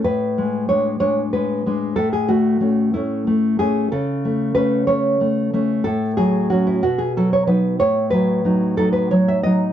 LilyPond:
\new Staff \with { instrumentName = "Nylon-string guitar" } { \time 6/8 \key a \major \tempo 4. = 62 << { b'4 cis''8 cis''8 b'4 | a'16 gis'16 fis'4 e'4 gis'8 | a'4 b'8 cis''8 r4 | \key b \mixolydian a'8 gis'8 fis'16 e'16 fis'16 gis'16 a'16 cis''16 b'8 |
cis''8 b'4 a'16 b'16 cis''16 e''16 dis''8 | } \\ { a,8 gis8 <gis d'>8 <gis d'>8 gis8 <gis d'>8 | a,8 a8 <a cis'>8 <a cis'>8 a8 <a cis'>8 | cis8 a8 <a cis'>8 <a cis'>8 a8 <a cis'>8 | a,8 fis8 <fis cis'>8 b,8 fis8 <fis dis'>8 |
a,8 fis8 <fis dis'>8 <fis dis'>8 fis8 <fis dis'>8 | } >> }